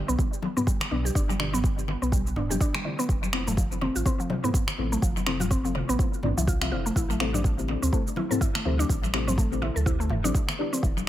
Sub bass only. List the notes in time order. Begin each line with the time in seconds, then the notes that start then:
0.09 B1
0.91 B1
1.15 G1
2.02 B1
2.36 D1
2.50 G1
3.09 F1
3.96 A1
4.78 A1
5.02 F1
5.89 A1
6.24 A1
6.38 C2
6.72 F1
6.96 A1
7.83 D2
8.65 D2
8.89 A1
9.76 D2
10.10 E1
10.24 A1
10.83 E1